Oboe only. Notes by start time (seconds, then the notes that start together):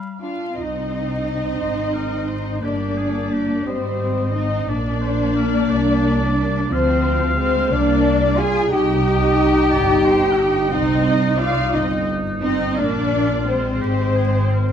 Already playing: F5
1.60 C5
1.93 A#4
2.28 C5
2.64 G4
2.97 G#4
3.33 G4
3.67 D#5
4.68 D5
5.02 C5
5.35 A#4
5.70 D5
6.72 F5
8.72 D#5
9.71 D5
10.05 C5
10.39 D#4
12.76 F4
13.81 G4
14.16 G#4
14.53 A#4